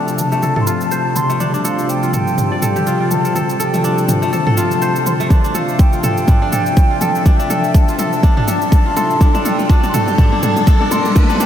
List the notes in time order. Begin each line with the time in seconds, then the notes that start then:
Already playing: D2 C3 F3 A3 D4 F4 G4 A4 E5 A5
0.08 cabasa
0.18 D2 A5, mid tom, cabasa
0.32 A3, cabasa
0.42 A4, mid tom, cabasa
0.56 D2 A4, mid tom
0.61 C6
0.67 F4 A5, cabasa
0.81 cabasa
0.91 D2 C5, cabasa
1.16 C6, mid tom, cabasa
1.29 A3, cabasa
1.40 D2 G3 D4, mid tom, cabasa
1.54 D4, cabasa
1.64 A4 F5, cabasa
1.78 D2, cabasa
1.89 G5, cabasa
2.03 F4, cabasa
2.13 D2 A4 G5, mid tom, cabasa
2.27 cabasa
2.38 mid tom, cabasa
2.52 D2 D5
2.62 A4 G5, mid tom, cabasa
2.76 G4, mid tom, cabasa
2.86 D2 F4, cabasa
3.00 F4
3.11 A5, mid tom, cabasa
3.25 A4, cabasa
3.35 D2 A4, mid tom, cabasa
3.49 cabasa
3.60 A4 G5, cabasa
3.73 D2 A3, mid tom, cabasa
3.84 D4 A5, cabasa
3.98 cabasa
4.09 D2 A5, mid tom, cabasa
4.22 A3, cabasa
4.33 A4, mid tom, cabasa
4.47 D2 A4, mid tom
4.57 F4 A5, cabasa
4.71 cabasa
4.82 D2 C5, cabasa
4.96 cabasa
5.06 C6, mid tom, cabasa
5.20 A3, cabasa
5.30 D2 D4 E5, kick, mid tom, riser, cabasa
5.44 D4, cabasa
5.55 A4 F5, mid tom, cabasa
5.69 D2, cabasa
5.79 G5, kick, mid tom, cabasa
5.93 F4, cabasa
6.03 D2 A4 G5, mid tom, cabasa
6.17 cabasa
6.28 D4, kick, mid tom, cabasa
6.42 D2 D4
6.52 A4 G5, mid tom, cabasa
6.66 cabasa
6.77 D2, kick, mid tom, cabasa
6.91 F4
7.01 A4 A5, mid tom, cabasa
7.15 cabasa
7.26 D2 D4, kick, mid tom, cabasa
7.39 D4, cabasa
7.50 A4 G5, mid tom, cabasa
7.64 D2, cabasa
7.74 A5, kick, mid tom, cabasa
7.88 F4, cabasa
7.99 D2 A4 A5, mid tom, cabasa
8.13 cabasa
8.23 D4, kick, mid tom, cabasa
8.37 D2 D4, mid tom
8.48 A4 A5, mid tom, cabasa
8.62 cabasa
8.72 D2, kick, mid tom, cabasa
8.86 F4
8.96 A4 C6, mid tom, cabasa
9.10 cabasa
9.21 D2 D4 A4, kick, mid tom, cabasa
9.34 D4, mid tom, cabasa
9.45 A4 G5, mid tom, cabasa
9.59 D2, mid tom, cabasa
9.69 D4 A5, kick, mid tom, cabasa
9.83 D4, mid tom, cabasa
9.88 C6
9.94 D2 A4 A5, mid tom, cabasa
10.08 mid tom, cabasa
10.18 D4, kick, mid tom, cabasa
10.32 D2 D4, mid tom
10.43 A4 A5, mid tom, cabasa
10.56 mid tom, cabasa
10.67 D2 D4, kick, mid tom, cabasa
10.81 D4, mid tom
10.91 A4 C6, mid tom, cabasa
11.05 mid tom, cabasa
11.16 D2 D4, kick, mid tom, cabasa
11.23 mid tom
11.30 D4, mid tom, cabasa
11.35 mid tom
11.40 D4 G5, mid tom, cabasa